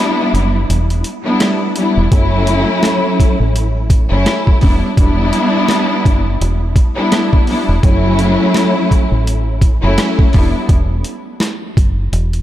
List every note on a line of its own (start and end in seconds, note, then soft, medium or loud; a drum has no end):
0.00 1.07 G3 loud
0.00 1.07 B3 loud
0.00 1.08 D4 loud
0.00 1.08 E4 loud
0.34 0.66 F#1 medium
0.34 closed hi-hat medium
0.69 1.02 E1 medium
0.69 closed hi-hat loud
0.90 closed hi-hat soft
1.04 closed hi-hat medium
1.24 1.72 G3 medium
1.24 1.72 B3 medium
1.24 1.72 D4 medium
1.24 1.72 E4 loud
1.40 cross-stick medium
1.40 snare loud
1.40 closed hi-hat medium
1.76 2.10 G3 medium
1.76 2.10 B3 medium
1.76 2.10 D4 medium
1.76 2.10 E4 medium
1.76 closed hi-hat medium
1.97 2.11 E1 medium
2.11 2.64 F#1 loud
2.11 3.92 F#3 loud
2.11 3.93 A3 loud
2.11 3.93 C#4 loud
2.11 3.93 E4 loud
2.11 kick loud
2.11 closed hi-hat medium
2.47 closed hi-hat medium
2.83 cross-stick medium
2.83 snare loud
2.83 closed hi-hat loud
3.20 kick medium
3.20 closed hi-hat medium
3.40 4.07 A1 medium
3.56 closed hi-hat loud
3.90 kick medium
3.90 closed hi-hat medium
4.11 4.25 F#1 medium
4.11 4.58 F#3 medium
4.11 4.58 A3 medium
4.11 4.58 C#4 loud
4.11 4.58 E4 loud
4.26 cross-stick medium
4.26 snare loud
4.26 closed hi-hat medium
4.47 kick medium
4.61 4.82 E1 medium
4.61 4.95 G3 medium
4.61 4.95 B3 medium
4.61 4.95 D4 medium
4.61 4.96 E4 medium
4.61 kick medium
4.61 open hi-hat medium
4.97 5.30 E1 loud
4.97 6.79 G3 loud
4.97 6.79 B3 loud
4.97 6.79 D4 loud
4.97 6.79 E4 loud
4.97 kick loud
4.97 closed hi-hat medium
5.33 closed hi-hat medium
5.68 cross-stick medium
5.68 snare loud
5.68 closed hi-hat loud
6.06 6.38 F#1 medium
6.06 kick loud
6.06 closed hi-hat medium
6.41 6.73 E1 medium
6.41 closed hi-hat loud
6.76 kick medium
6.76 closed hi-hat medium
6.96 7.43 G3 loud
6.96 7.43 B3 medium
6.96 7.44 D4 medium
6.96 7.44 E4 loud
7.12 cross-stick medium
7.12 snare loud
7.12 closed hi-hat medium
7.33 kick loud
7.47 7.82 G3 medium
7.47 7.82 B3 medium
7.47 7.82 D4 medium
7.47 7.82 E4 medium
7.47 open hi-hat medium
7.69 7.82 E1 medium
7.83 8.36 F#1 loud
7.83 9.64 F#3 loud
7.83 9.64 A3 loud
7.83 9.64 C#4 loud
7.83 9.65 E4 loud
7.83 kick loud
7.83 closed hi-hat medium
8.19 closed hi-hat medium
8.54 cross-stick medium
8.54 snare loud
8.54 closed hi-hat loud
8.91 kick loud
8.91 closed hi-hat medium
9.12 9.79 A1 medium
9.27 closed hi-hat loud
9.61 kick medium
9.61 closed hi-hat medium
9.82 9.97 F#1 medium
9.82 10.29 F#3 medium
9.82 10.29 A3 medium
9.82 10.30 C#4 loud
9.82 10.30 E4 loud
9.98 cross-stick medium
9.98 snare loud
9.98 closed hi-hat medium
10.19 kick loud
10.33 10.53 E1 medium
10.33 10.67 G3 medium
10.33 10.67 B3 medium
10.33 10.67 D4 medium
10.33 10.67 E4 medium
10.33 kick medium
10.33 open hi-hat medium
10.69 11.02 E1 loud
10.69 kick loud
10.69 closed hi-hat medium
11.04 closed hi-hat medium
11.40 cross-stick medium
11.40 snare loud
11.40 closed hi-hat loud
11.77 12.09 F#1 medium
11.77 kick medium
11.77 closed hi-hat medium
12.12 12.42 E1 medium
12.12 closed hi-hat loud
12.33 closed hi-hat soft